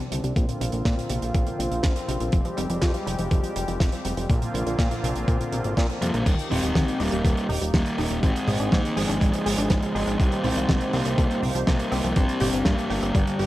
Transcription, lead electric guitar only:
6.02 6.25 G3 medium
6.02 6.25 A#3 medium
6.26 6.34 D#3 medium
6.26 6.33 G3 medium
6.51 6.97 G#3 medium
6.51 7.00 C4 loud
7.00 7.46 G3 medium
7.00 7.46 A#3 loud
7.74 8.20 G3 medium
7.74 8.20 A#3 loud
8.23 8.69 G#3 medium
8.23 8.74 C4 loud
8.73 8.96 D#3 medium
8.73 8.97 A#3 loud
8.97 9.92 F3 medium
8.97 9.94 G#3 loud
9.95 10.18 F3 medium
9.95 10.20 G#3 medium
10.20 10.43 D#3 medium
10.20 10.43 G3 medium
10.44 10.90 G#3 medium
10.44 10.93 C4 loud
10.93 11.40 G3 medium
10.93 11.39 A#3 medium
11.67 12.13 G3 medium
11.67 12.16 A#3 loud
12.16 12.63 G3 medium
12.16 12.65 C4 loud
12.65 13.12 G3 medium
12.65 13.16 A#3 loud
13.15 13.46 D3 medium
13.15 13.46 G3 medium

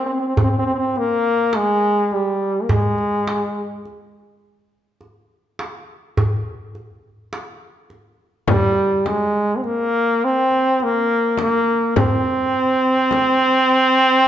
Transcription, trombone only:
0.06 0.11 C4 medium
0.13 0.18 C4 medium
0.20 0.26 C4 soft
0.27 0.33 C4 medium
0.36 0.41 C4 soft
0.43 0.49 C4 medium
0.49 0.55 C4 medium
0.59 0.64 C4 medium
0.66 0.71 C4 medium
0.74 0.77 C4 medium
0.74 0.99 C4 medium
0.97 1.58 A#3 medium
1.56 2.14 G#3 medium
2.12 2.64 G3 medium
2.62 2.73 A#3 medium
2.72 3.86 G#3 medium
8.49 9.09 G3 medium
9.08 9.59 G#3 medium
9.57 9.66 C4 medium
9.64 10.26 A#3 loud
10.24 10.84 C4 loud
10.83 11.40 A#3 medium
11.41 11.94 A#3 medium
11.98 14.28 C4 loud

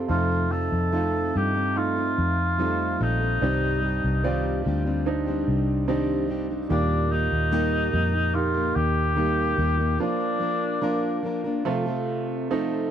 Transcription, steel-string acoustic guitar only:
0.09 0.49 F3 medium
0.09 0.50 C4 medium
0.09 0.51 D#4 medium
0.09 0.52 A4 medium
0.50 0.91 F3 medium
0.50 0.92 C4 medium
0.50 0.93 D#4 medium
0.50 0.93 A4 medium
0.92 1.32 F3 medium
0.92 1.34 C4 medium
0.92 1.35 D#4 medium
0.92 1.35 A4 medium
1.33 1.55 F3 medium
1.33 1.56 C4 medium
1.33 1.55 D#4 medium
1.33 1.53 A4 medium
1.54 1.98 C4 soft
1.54 1.97 D#4 soft
1.54 1.95 A4 soft
1.96 2.58 C4 soft
1.96 2.59 D#4 soft
1.96 2.59 A4 medium
2.58 2.98 F3 medium
2.58 2.99 C4 medium
2.58 3.00 D#4 medium
2.58 3.01 A4 medium
2.99 3.20 F3 medium
2.99 3.21 C4 medium
2.99 3.21 D#4 medium
2.99 3.19 A4 medium
3.20 3.42 C4 soft
3.20 3.42 D#4 soft
3.20 3.41 A4 soft
3.41 3.83 C3 medium
3.41 3.83 D#3 medium
3.41 3.81 G3 medium
3.41 3.83 C4 medium
3.41 3.84 G4 medium
3.82 4.24 G3 medium
3.82 4.24 C4 medium
3.82 4.25 G4 medium
4.24 4.65 C3 medium
4.24 4.65 D#3 medium
4.24 4.63 G3 medium
4.24 4.65 C4 medium
4.24 4.66 G4 medium
4.65 4.85 G3 medium
4.65 4.86 C4 medium
4.65 4.85 D4 medium
4.65 4.84 G4 medium
4.85 5.28 G3 soft
4.85 5.27 C4 soft
4.85 5.26 D4 medium
4.85 5.25 G4 medium
5.26 5.87 G3 soft
5.26 5.88 C4 medium
5.26 5.88 D4 medium
5.26 5.88 G4 medium
5.87 6.28 C3 medium
5.87 6.29 D#3 medium
5.87 6.27 G3 medium
5.87 6.28 C4 medium
5.87 6.29 D4 medium
5.87 6.30 G4 medium
6.28 6.49 G3 medium
6.28 6.49 C4 medium
6.28 6.49 D4 medium
6.28 6.48 G4 medium
6.49 6.69 G3 soft
6.49 6.70 C4 soft
6.49 6.70 D4 soft
6.49 6.70 G4 soft
6.69 7.11 D#3 medium
6.69 7.09 G3 medium
6.69 7.10 A#3 medium
6.69 7.12 G4 medium
7.10 7.51 G3 medium
7.10 7.51 A#3 medium
7.10 7.52 D#4 medium
7.10 7.52 G4 medium
7.51 7.93 D#3 medium
7.51 7.91 G3 medium
7.51 7.92 A#3 medium
7.51 7.94 D#4 medium
7.51 7.94 G4 medium
7.92 8.13 G3 medium
7.92 8.14 A#3 medium
7.92 8.14 D#4 medium
7.92 8.12 G4 medium
8.13 8.56 A#3 soft
8.13 8.55 D#4 soft
8.13 8.53 G4 medium
8.54 9.16 A#3 soft
8.54 9.17 D#4 soft
8.54 9.16 G4 medium
9.16 9.58 D#3 medium
9.16 9.56 G3 medium
9.16 9.57 A#3 medium
9.16 9.58 D#4 medium
9.16 9.59 G4 medium
9.57 9.78 G3 medium
9.57 9.79 A#3 medium
9.57 9.78 D#4 medium
9.57 9.76 G4 medium
9.78 9.98 A#3 soft
9.78 10.00 D#4 soft
9.78 9.99 G4 soft
9.99 10.38 F3 medium
9.99 10.40 A#3 medium
9.99 10.41 D4 medium
9.99 10.42 A#4 medium
10.40 10.80 F3 medium
10.40 10.81 A#3 medium
10.40 10.82 D4 medium
10.40 10.83 A#4 medium
10.82 11.22 F3 medium
10.82 11.23 A#3 medium
10.82 11.24 D4 medium
10.82 11.25 A#4 medium
11.23 11.44 F3 medium
11.23 11.45 A#3 medium
11.23 11.45 D4 medium
11.23 11.43 A#4 medium
11.44 11.66 A#3 soft
11.44 11.66 D4 medium
11.44 11.66 A#4 medium
11.65 11.87 F3 medium
11.65 11.87 C4 medium
11.65 11.87 F4 medium
11.65 11.85 A4 medium
11.86 12.51 C4 soft
11.86 12.51 F4 medium
11.86 12.51 A4 medium
12.51 12.91 F3 medium
12.51 12.91 C4 medium
12.51 12.91 F4 medium
12.51 12.91 A4 medium

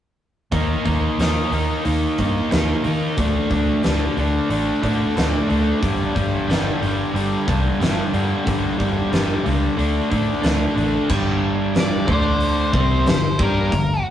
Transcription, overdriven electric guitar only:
0.53 0.84 D#3 medium
0.53 0.85 A#3 medium
0.53 0.85 D#4 loud
0.85 1.19 D#3 medium
0.85 1.19 A#3 medium
0.85 1.20 D#4 medium
1.20 1.52 D#3 medium
1.20 1.52 A#3 medium
1.20 1.52 D#4 medium
1.53 1.83 D#3 medium
1.53 1.84 A#3 medium
1.53 1.84 D#4 medium
1.84 2.17 D#3 medium
1.84 2.17 A#3 medium
1.84 2.18 D#4 medium
2.18 2.49 D#3 medium
2.18 2.49 A#3 medium
2.18 2.50 D#4 medium
2.50 2.82 D#3 medium
2.50 2.83 A#3 medium
2.50 2.83 D#4 medium
2.84 3.15 D#3 medium
2.84 3.16 A#3 medium
2.84 3.16 D#4 medium
3.17 3.49 D3 medium
3.17 3.50 A3 medium
3.17 3.51 D4 medium
3.50 3.82 D3 medium
3.50 3.83 A3 medium
3.50 3.83 D4 medium
3.83 4.17 D3 medium
3.83 4.18 A3 medium
3.83 4.18 D4 medium
4.18 4.49 D3 medium
4.18 4.50 A3 medium
4.18 4.50 D4 medium
4.50 4.81 D3 medium
4.50 4.82 A3 medium
4.50 4.82 D4 loud
4.82 5.15 D3 medium
4.82 5.16 A3 medium
4.82 5.17 D4 medium
5.16 5.47 D3 medium
5.16 5.49 A3 medium
5.16 5.49 D4 medium
5.49 5.80 D3 medium
5.49 5.82 A3 medium
5.49 8.99 D4 medium
5.82 6.14 G2 medium
5.82 6.14 D3 medium
5.82 6.14 G3 medium
6.15 6.47 G2 medium
6.15 6.47 D3 medium
6.15 6.47 G3 medium
6.48 6.80 G2 medium
6.48 6.80 D3 medium
6.48 6.81 G3 loud
6.81 7.12 G2 medium
6.81 7.13 D3 medium
6.81 7.13 G3 medium
7.13 7.46 G2 medium
7.13 7.47 D3 medium
7.13 7.47 G3 medium
7.47 7.78 G2 medium
7.47 7.79 D3 medium
7.47 7.79 G3 medium
7.79 8.12 G2 medium
7.79 8.12 D3 medium
7.79 8.13 G3 medium
8.13 8.44 G2 medium
8.13 8.44 D3 medium
8.13 8.45 G3 medium
8.45 8.77 G2 medium
8.45 8.77 D3 medium
8.45 8.77 G3 medium
8.78 9.10 G2 medium
8.78 9.10 D3 medium
8.78 9.10 G3 medium
9.11 9.42 G2 medium
9.11 9.43 D3 medium
9.11 9.43 G3 medium
9.43 9.76 G2 medium
9.43 9.76 D3 medium
9.43 9.76 G3 medium
9.77 10.09 D3 medium
9.77 10.09 A3 medium
9.77 10.09 D4 medium
10.10 10.41 D3 medium
10.10 10.42 A3 medium
10.10 10.42 D4 medium
10.42 10.74 D3 medium
10.42 10.75 A3 medium
10.42 10.75 D4 medium
10.76 11.07 D3 medium
10.76 11.08 A3 medium
10.76 11.08 D4 medium
11.10 12.08 G2 medium
11.10 12.06 D3 medium
11.10 12.07 G3 medium
12.07 12.72 D3 medium
12.07 12.73 A3 medium
12.07 12.73 D4 medium
12.72 13.05 C3 medium
12.72 13.06 G3 medium
12.72 13.06 C4 medium
13.07 13.34 G2 medium
13.07 13.34 D3 medium
13.40 13.72 G3 medium
13.40 13.72 D4 medium
13.40 13.72 G4 medium
13.72 13.99 G2 medium
13.72 13.99 D3 medium

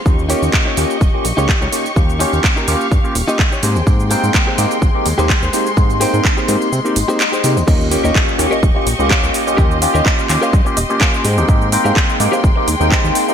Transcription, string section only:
0.06 3.59 G4 medium
0.06 1.95 D#5 medium
0.06 3.59 C#6 medium
1.96 3.61 F5 medium
3.63 7.64 G#3 medium
3.63 5.52 G5 medium
3.63 7.64 C6 medium
7.68 11.21 G4 medium
7.68 11.21 D#5 medium
7.68 9.56 C#6 medium
9.58 13.34 C6 medium
11.25 13.34 G#3 medium
11.25 13.34 G5 medium

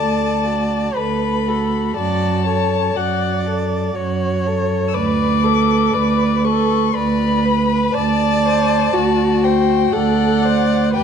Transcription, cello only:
0.00 0.86 D2 soft
0.96 1.85 D2 soft
1.97 2.84 F#2 medium
2.96 3.84 F#2 soft
3.96 4.83 F#2 medium
4.96 5.84 D2 medium
5.95 6.83 D2 medium
6.95 7.83 D2 medium
7.95 8.82 D2 medium
8.94 9.81 D2 medium
9.93 10.82 D2 medium
10.96 11.04 E2 medium

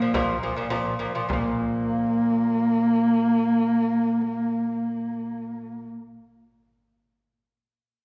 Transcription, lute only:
0.02 0.12 A#2 medium
0.02 0.12 F3 loud
0.14 0.36 A#2 loud
0.14 0.36 F3 loud
0.43 0.54 A#2 medium
0.43 0.54 F3 medium
0.56 0.68 A#2 medium
0.56 0.68 F3 medium
0.70 0.94 A#2 loud
0.70 0.94 F3 loud
0.99 1.11 A#2 medium
0.99 1.12 F3 loud
1.15 1.27 A#2 medium
1.15 1.27 F3 loud
1.29 5.85 A#2 medium
1.33 5.89 F3 medium

